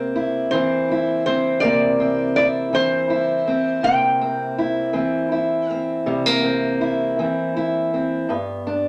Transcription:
Already playing: steel-string acoustic guitar C3 A#3 C4
0.16 steel-string acoustic guitar E4
0.51 steel-string acoustic guitar E3 C4, resonator guitar played with a steel bar C5
0.91 steel-string acoustic guitar E4
1.26 steel-string acoustic guitar C4, resonator guitar played with a steel bar C5
1.60 steel-string acoustic guitar C3 A#3, resonator guitar played with a steel bar D5
2.00 steel-string acoustic guitar C4
2.36 steel-string acoustic guitar E4, resonator guitar played with a steel bar D5
2.73 steel-string acoustic guitar E3 C4, resonator guitar played with a steel bar C5
3.10 steel-string acoustic guitar E4
3.48 steel-string acoustic guitar C4
3.83 steel-string acoustic guitar C3 A#3, resonator guitar played with a steel bar G5
4.21 steel-string acoustic guitar C4
4.58 steel-string acoustic guitar E4
4.93 steel-string acoustic guitar E3 C4
5.32 steel-string acoustic guitar E4
5.70 steel-string acoustic guitar C4, resonator guitar played with a steel bar F5
6.06 steel-string acoustic guitar C3 G3
6.26 steel-string acoustic guitar A#3
6.44 steel-string acoustic guitar C4
6.81 steel-string acoustic guitar E4
7.19 steel-string acoustic guitar E3 C4
7.56 steel-string acoustic guitar E4
7.94 steel-string acoustic guitar C4
8.29 steel-string acoustic guitar G2 B3
8.67 steel-string acoustic guitar D4

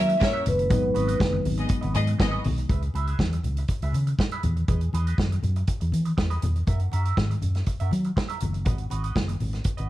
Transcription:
Already playing: fingered electric bass F#3, tine electric piano G#3 A#3 C#4 E4, vibraphone E5
0.09 muted clean electric guitar stroke, closed hi-hat
0.20 string section C#4 A#4 E5, vibraphone C#5, muted clean electric guitar stroke, kick, snare, muted conga
0.33 clean electric guitar F#4 A#4 E5
0.45 fingered electric bass F#1, vibraphone B4, muted clean electric guitar stroke, closed hi-hat, high conga, low conga
0.58 muted clean electric guitar stroke, closed hi-hat
0.70 fingered electric bass G#1, tine electric piano F#3 G#3 B3 D#4, clean electric guitar F#4 B4 D#5, kick, closed hi-hat, low conga
0.83 muted clean electric guitar stroke
0.94 fingered electric bass G#1, clean electric guitar F#4 B4 D#5, closed hi-hat, muted conga
1.08 clean electric guitar F#4 B4 D#5, closed hi-hat
1.19 fingered electric bass F#1, muted clean electric guitar stroke, kick, snare, high conga
1.33 muted clean electric guitar stroke, high conga
1.45 fingered electric bass G#1, open hi-hat, muted conga, low conga
1.57 string section B3 G#4 D#5, muted clean electric guitar stroke, closed hi-hat
1.69 muted clean electric guitar stroke, kick, closed hi-hat
1.81 fingered electric bass G#1, clean electric guitar F#4 B4 D#5, closed hi-hat
1.94 fingered electric bass G#2, string section B3 G#4 D#5, muted clean electric guitar stroke, closed hi-hat, high conga
2.07 muted clean electric guitar stroke, closed hi-hat
2.19 fingered electric bass G#1, string section B3 G#4 D#5, muted clean electric guitar stroke, kick, snare, muted conga
2.31 clean electric guitar F#4 B4 D#5
2.44 fingered electric bass B1, muted clean electric guitar stroke, open hi-hat, muted conga, high conga, low conga
2.58 muted clean electric guitar stroke, closed hi-hat
2.69 fingered electric bass C#2, clean electric guitar G#4 B4 E5, kick, closed hi-hat, muted conga, low conga
2.82 muted clean electric guitar stroke, closed hi-hat
2.94 fingered electric bass C#2, clean electric guitar G#4 B4 E5, closed hi-hat, muted conga
3.07 clean electric guitar G#4 B4 E5, closed hi-hat
3.19 fingered electric bass E2, muted clean electric guitar stroke, kick, snare, muted conga, high conga
3.32 muted clean electric guitar stroke, closed hi-hat, high conga
3.44 fingered electric bass C#2, closed hi-hat, low conga
3.57 muted clean electric guitar stroke, closed hi-hat
3.68 muted clean electric guitar stroke, kick, closed hi-hat, muted conga
3.82 fingered electric bass C#2, clean electric guitar G#4 B4 E5, closed hi-hat
3.93 fingered electric bass C#3, muted clean electric guitar stroke, closed hi-hat, high conga
4.07 muted clean electric guitar stroke, closed hi-hat
4.18 muted clean electric guitar stroke, kick, snare, muted conga
4.31 clean electric guitar G#4 B4 E5, closed hi-hat
4.43 fingered electric bass E2, muted clean electric guitar stroke, closed hi-hat, high conga, low conga
4.57 muted clean electric guitar stroke, closed hi-hat
4.68 fingered electric bass E2, clean electric guitar G#4 B4 D#5, kick, closed hi-hat, low conga
4.81 muted clean electric guitar stroke, closed hi-hat
4.93 fingered electric bass E2, clean electric guitar G#4 B4 D#5, closed hi-hat, muted conga
5.07 clean electric guitar G#4 B4 D#5, closed hi-hat
5.18 fingered electric bass F#2, kick, snare, muted conga, high conga
5.30 muted clean electric guitar stroke, closed hi-hat, high conga
5.43 fingered electric bass F#2, closed hi-hat, muted conga, low conga
5.56 muted clean electric guitar stroke, closed hi-hat
5.67 muted clean electric guitar stroke, kick, closed hi-hat, muted conga
5.81 fingered electric bass E2, muted clean electric guitar stroke, closed hi-hat
5.92 fingered electric bass E3, closed hi-hat, muted conga, high conga
6.05 muted clean electric guitar stroke, closed hi-hat
6.17 fingered electric bass E2, muted clean electric guitar stroke, kick, snare
6.30 clean electric guitar G#4 B4 D#5, closed hi-hat
6.42 fingered electric bass E2, muted clean electric guitar stroke, closed hi-hat, muted conga, high conga, low conga
6.56 muted clean electric guitar stroke, closed hi-hat
6.67 fingered electric bass F#2, clean electric guitar F#4 A#4 E5, kick, closed hi-hat, muted conga, low conga
6.80 muted clean electric guitar stroke, closed hi-hat
6.91 fingered electric bass F#2, clean electric guitar F#4 A#4 E5, closed hi-hat, muted conga
7.05 clean electric guitar F#4 A#4 E5, closed hi-hat
7.17 fingered electric bass G#2, kick, snare, high conga
7.30 muted clean electric guitar stroke, closed hi-hat, high conga
7.42 fingered electric bass F#2, closed hi-hat, muted conga, low conga
7.55 muted clean electric guitar stroke, snare, closed hi-hat
7.66 muted clean electric guitar stroke, kick, closed hi-hat
7.80 fingered electric bass F#2, clean electric guitar F#4 A#4 E5, closed hi-hat
7.91 fingered electric bass F#3, muted clean electric guitar stroke, closed hi-hat, muted conga, high conga
8.04 muted clean electric guitar stroke, closed hi-hat
8.16 muted clean electric guitar stroke, kick, snare, muted conga
8.29 clean electric guitar F#4 A#4 E5, closed hi-hat
8.40 fingered electric bass F#1, muted clean electric guitar stroke, closed hi-hat, muted conga, high conga, low conga
8.53 muted clean electric guitar stroke, closed hi-hat
8.65 fingered electric bass G#1, clean electric guitar F#4 B4 D#5, kick, closed hi-hat, low conga
8.78 muted clean electric guitar stroke, closed hi-hat
8.90 fingered electric bass G#1, clean electric guitar F#4 B4 D#5, closed hi-hat, muted conga
9.03 clean electric guitar F#4 B4 D#5, closed hi-hat
9.15 fingered electric bass F#1, muted clean electric guitar stroke, kick, snare, high conga
9.28 muted clean electric guitar stroke, closed hi-hat, high conga
9.40 fingered electric bass G#1, open hi-hat, low conga
9.53 muted clean electric guitar stroke, snare, closed hi-hat
9.64 muted clean electric guitar stroke, kick, closed hi-hat, muted conga
9.77 fingered electric bass G#1, clean electric guitar F#4 B4 D#5, closed hi-hat

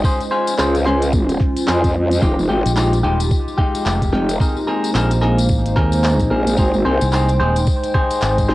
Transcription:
Already playing: ambient pad G#3 C5
0.04 clean electric guitar C#4 F4 G#4 C5, ambient pad C#4 F4, kick, tambourine
0.21 closed hi-hat, tambourine
0.31 clean electric guitar C#4 F4 G#4 C5
0.47 closed hi-hat, tambourine
0.59 wobble bass C#2, clean electric guitar C#4 F4 G#4 C5, clap, tambourine
0.75 closed hi-hat, tambourine
0.86 clean electric guitar C#4 F4 G#4 C5, snare
1.02 closed hi-hat, tambourine
1.13 kick, tambourine
1.29 closed hi-hat, tambourine
1.40 kick, snare
1.57 closed hi-hat, tambourine
1.67 wobble bass F2, clean electric guitar C#4 F4 G#4 C5, clap, tambourine
1.84 kick, closed hi-hat, tambourine
2.11 closed hi-hat, tambourine
2.22 wobble bass F1, clean electric guitar G#3 D#4 F4 G4, ambient pad G#3 D#4 F4 G4, kick, tambourine
2.39 wobble bass F1, tambourine
2.49 wobble bass G#1, clean electric guitar G#3 D#4 F4 G4
2.66 fingered electric bass A#1, closed hi-hat, tambourine
2.76 clean electric guitar G#3 D#4 F4 G4, clap, tambourine
2.93 closed hi-hat, tambourine
3.03 fingered electric bass D#1, clean electric guitar G#3 D#4 F4 G4
3.20 closed hi-hat, tambourine
3.31 kick, tambourine
3.48 tambourine
3.58 clean electric guitar G#3 D#4 F4 G4, kick
3.75 closed hi-hat, tambourine
3.86 fingered electric bass F1, clap, tambourine
4.02 kick, closed hi-hat, tambourine
4.13 wobble bass F1, clean electric guitar G#3 D#4 F4 G4, snare
4.29 closed hi-hat, tambourine
4.40 ambient pad A#3 C5, clean electric guitar C4 D#4 G#4 A#4, kick, tambourine
4.57 tambourine
4.67 clean electric guitar C4 D#4 G#4 A#4
4.84 closed hi-hat, tambourine
4.94 fingered electric bass A#1, clean electric guitar C4 D#4 G#4 A#4, clap, tambourine
5.11 closed hi-hat, tambourine
5.21 clean electric guitar C4 D#4 G#4 A#4, snare
5.38 closed hi-hat, tambourine
5.49 fingered electric bass A1, kick, tambourine
5.66 closed hi-hat, tambourine
5.76 fingered electric bass D#2, clean electric guitar C4 D#4 G#4 A#4, kick, snare
5.92 closed hi-hat, tambourine
6.04 clap, tambourine
6.19 kick, closed hi-hat, tambourine
6.30 wobble bass A#1, clean electric guitar C4 D#4 G#4 A#4
6.47 closed hi-hat, tambourine
6.57 wobble bass G#1, ambient pad G#3 G5, clean electric guitar D#4 G4 G#4 C5, kick, tambourine
6.74 wobble bass G#1, tambourine
6.85 wobble bass C2, clean electric guitar D#4 G4 G#4 C5
7.01 fingered electric bass C2, closed hi-hat, tambourine
7.12 clean electric guitar D#4 G4 G#4 C5, clap, tambourine
7.29 closed hi-hat, tambourine
7.40 fingered electric bass D#1, clean electric guitar D#4 G4 G#4 C5
7.56 closed hi-hat, tambourine
7.67 kick, tambourine
7.83 closed hi-hat, tambourine
7.94 clean electric guitar D#4 G4 G#4 C5, kick
8.10 closed hi-hat, tambourine
8.21 fingered electric bass G#1, clap, tambourine
8.38 kick, closed hi-hat, tambourine
8.48 wobble bass G#1, clean electric guitar D#4 G4 G#4 C5, snare

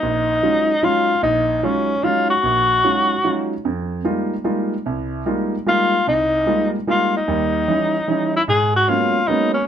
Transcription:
Already playing: tenor saxophone D#4
0.02 grand piano A#1
0.43 grand piano F#3 G#3 C#4 D#4 F4
0.83 grand piano F#3 G#3 C#4 D#4 F4, tenor saxophone F4
1.22 grand piano A#1, tenor saxophone D#4
1.63 grand piano F#3 G#3 C#4 D#4 F4, tenor saxophone C#4
2.03 grand piano F#3 G#3 C#4 D#4 F4, tenor saxophone F4
2.30 tenor saxophone F#4
2.43 grand piano A#1
2.84 grand piano F#3 G#3 C#4 D#4 F4
3.24 grand piano F#3 G#3 C#4 D#4 F4
3.65 grand piano F2
4.04 grand piano G3 G#3 A#3 D#4 F4
4.44 grand piano G3 G#3 A#3 D#4 F4
4.86 grand piano C2
5.26 grand piano G3 G#3 A#3 D#4 F4
5.66 grand piano G3 G#3 A#3 D#4 F4, tenor saxophone F4
6.07 grand piano C2, tenor saxophone D#4
6.46 grand piano G3 G#3 A#3 D#4 F4
6.87 grand piano G3 G#3 A#3 D#4 F4, tenor saxophone F4
7.17 tenor saxophone D#4
7.28 grand piano D#2 G3
7.68 grand piano E3 G3 C#4 D#4
8.08 grand piano E3 G3 C#4 D#4
8.36 tenor saxophone E4
8.48 grand piano G#2, tenor saxophone G#4
8.76 tenor saxophone F#4
8.88 grand piano F#3 G#3 A#3 B3 C#4, tenor saxophone F4
9.27 grand piano F#3 G#3 A#3 B3 C#4, tenor saxophone D#4
9.54 tenor saxophone C#4

